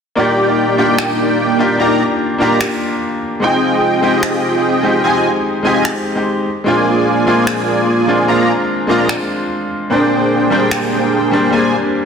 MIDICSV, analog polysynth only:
0, 0, Header, 1, 2, 480
1, 0, Start_track
1, 0, Key_signature, -3, "major"
1, 0, Tempo, 405405
1, 207, Time_signature, 4, 2, 24, 8
1, 14268, End_track
2, 0, Start_track
2, 0, Title_t, "Analog polysynth"
2, 0, Program_c, 0, 90
2, 204, Note_on_c, 0, 67, 68
2, 204, Note_on_c, 0, 74, 67
2, 204, Note_on_c, 0, 79, 80
2, 205, Note_on_c, 0, 58, 77
2, 205, Note_on_c, 0, 63, 69
2, 899, Note_off_c, 0, 58, 0
2, 899, Note_off_c, 0, 63, 0
2, 899, Note_off_c, 0, 67, 0
2, 899, Note_off_c, 0, 74, 0
2, 899, Note_off_c, 0, 79, 0
2, 925, Note_on_c, 0, 58, 87
2, 925, Note_on_c, 0, 63, 81
2, 925, Note_on_c, 0, 67, 81
2, 925, Note_on_c, 0, 74, 80
2, 926, Note_on_c, 0, 79, 96
2, 2099, Note_off_c, 0, 67, 0
2, 2100, Note_off_c, 0, 58, 0
2, 2100, Note_off_c, 0, 63, 0
2, 2100, Note_off_c, 0, 74, 0
2, 2100, Note_off_c, 0, 79, 0
2, 2125, Note_on_c, 0, 74, 89
2, 2126, Note_on_c, 0, 58, 93
2, 2126, Note_on_c, 0, 63, 85
2, 2126, Note_on_c, 0, 67, 85
2, 2126, Note_on_c, 0, 82, 105
2, 2397, Note_off_c, 0, 58, 0
2, 2397, Note_off_c, 0, 63, 0
2, 2397, Note_off_c, 0, 67, 0
2, 2397, Note_off_c, 0, 74, 0
2, 2397, Note_off_c, 0, 82, 0
2, 2846, Note_on_c, 0, 58, 89
2, 2846, Note_on_c, 0, 67, 83
2, 2846, Note_on_c, 0, 74, 82
2, 2846, Note_on_c, 0, 82, 96
2, 2847, Note_on_c, 0, 63, 80
2, 3117, Note_off_c, 0, 58, 0
2, 3117, Note_off_c, 0, 63, 0
2, 3117, Note_off_c, 0, 67, 0
2, 3117, Note_off_c, 0, 74, 0
2, 3117, Note_off_c, 0, 82, 0
2, 4047, Note_on_c, 0, 60, 74
2, 4047, Note_on_c, 0, 65, 68
2, 4047, Note_on_c, 0, 68, 69
2, 4047, Note_on_c, 0, 75, 70
2, 4047, Note_on_c, 0, 79, 82
2, 4740, Note_off_c, 0, 79, 0
2, 4741, Note_off_c, 0, 60, 0
2, 4741, Note_off_c, 0, 65, 0
2, 4741, Note_off_c, 0, 68, 0
2, 4741, Note_off_c, 0, 75, 0
2, 4765, Note_on_c, 0, 65, 80
2, 4766, Note_on_c, 0, 60, 86
2, 4766, Note_on_c, 0, 68, 78
2, 4766, Note_on_c, 0, 75, 78
2, 4766, Note_on_c, 0, 79, 96
2, 5940, Note_off_c, 0, 60, 0
2, 5940, Note_off_c, 0, 65, 0
2, 5940, Note_off_c, 0, 68, 0
2, 5940, Note_off_c, 0, 75, 0
2, 5940, Note_off_c, 0, 79, 0
2, 5965, Note_on_c, 0, 60, 92
2, 5965, Note_on_c, 0, 65, 89
2, 5965, Note_on_c, 0, 80, 103
2, 5966, Note_on_c, 0, 68, 85
2, 5966, Note_on_c, 0, 75, 86
2, 6237, Note_off_c, 0, 60, 0
2, 6237, Note_off_c, 0, 65, 0
2, 6237, Note_off_c, 0, 68, 0
2, 6237, Note_off_c, 0, 75, 0
2, 6237, Note_off_c, 0, 80, 0
2, 6685, Note_on_c, 0, 60, 88
2, 6685, Note_on_c, 0, 65, 82
2, 6685, Note_on_c, 0, 68, 83
2, 6685, Note_on_c, 0, 75, 82
2, 6685, Note_on_c, 0, 80, 100
2, 6957, Note_off_c, 0, 60, 0
2, 6957, Note_off_c, 0, 65, 0
2, 6957, Note_off_c, 0, 68, 0
2, 6957, Note_off_c, 0, 75, 0
2, 6957, Note_off_c, 0, 80, 0
2, 7885, Note_on_c, 0, 58, 78
2, 7885, Note_on_c, 0, 65, 69
2, 7885, Note_on_c, 0, 68, 69
2, 7885, Note_on_c, 0, 74, 71
2, 7885, Note_on_c, 0, 80, 81
2, 8579, Note_off_c, 0, 58, 0
2, 8579, Note_off_c, 0, 65, 0
2, 8579, Note_off_c, 0, 74, 0
2, 8579, Note_off_c, 0, 80, 0
2, 8580, Note_off_c, 0, 68, 0
2, 8605, Note_on_c, 0, 65, 81
2, 8605, Note_on_c, 0, 74, 80
2, 8605, Note_on_c, 0, 80, 95
2, 8606, Note_on_c, 0, 58, 88
2, 8606, Note_on_c, 0, 68, 81
2, 9779, Note_off_c, 0, 74, 0
2, 9780, Note_off_c, 0, 58, 0
2, 9780, Note_off_c, 0, 65, 0
2, 9780, Note_off_c, 0, 68, 0
2, 9780, Note_off_c, 0, 80, 0
2, 9805, Note_on_c, 0, 58, 96
2, 9805, Note_on_c, 0, 65, 86
2, 9805, Note_on_c, 0, 68, 85
2, 9805, Note_on_c, 0, 74, 83
2, 9805, Note_on_c, 0, 82, 102
2, 10077, Note_off_c, 0, 58, 0
2, 10077, Note_off_c, 0, 65, 0
2, 10077, Note_off_c, 0, 68, 0
2, 10077, Note_off_c, 0, 74, 0
2, 10077, Note_off_c, 0, 82, 0
2, 10526, Note_on_c, 0, 58, 89
2, 10526, Note_on_c, 0, 65, 80
2, 10526, Note_on_c, 0, 68, 83
2, 10526, Note_on_c, 0, 74, 83
2, 10526, Note_on_c, 0, 82, 100
2, 10797, Note_off_c, 0, 58, 0
2, 10797, Note_off_c, 0, 65, 0
2, 10797, Note_off_c, 0, 68, 0
2, 10797, Note_off_c, 0, 74, 0
2, 10797, Note_off_c, 0, 82, 0
2, 11725, Note_on_c, 0, 58, 74
2, 11725, Note_on_c, 0, 62, 71
2, 11725, Note_on_c, 0, 79, 83
2, 11726, Note_on_c, 0, 68, 68
2, 11726, Note_on_c, 0, 72, 72
2, 12420, Note_off_c, 0, 58, 0
2, 12420, Note_off_c, 0, 62, 0
2, 12420, Note_off_c, 0, 68, 0
2, 12420, Note_off_c, 0, 72, 0
2, 12420, Note_off_c, 0, 79, 0
2, 12445, Note_on_c, 0, 72, 79
2, 12446, Note_on_c, 0, 58, 86
2, 12446, Note_on_c, 0, 62, 83
2, 12446, Note_on_c, 0, 68, 81
2, 12446, Note_on_c, 0, 79, 96
2, 13620, Note_off_c, 0, 58, 0
2, 13620, Note_off_c, 0, 62, 0
2, 13620, Note_off_c, 0, 68, 0
2, 13620, Note_off_c, 0, 72, 0
2, 13620, Note_off_c, 0, 79, 0
2, 13644, Note_on_c, 0, 80, 105
2, 13645, Note_on_c, 0, 58, 95
2, 13645, Note_on_c, 0, 62, 86
2, 13645, Note_on_c, 0, 68, 86
2, 13645, Note_on_c, 0, 72, 87
2, 13916, Note_off_c, 0, 80, 0
2, 13917, Note_off_c, 0, 58, 0
2, 13917, Note_off_c, 0, 62, 0
2, 13917, Note_off_c, 0, 68, 0
2, 13917, Note_off_c, 0, 72, 0
2, 14268, End_track
0, 0, End_of_file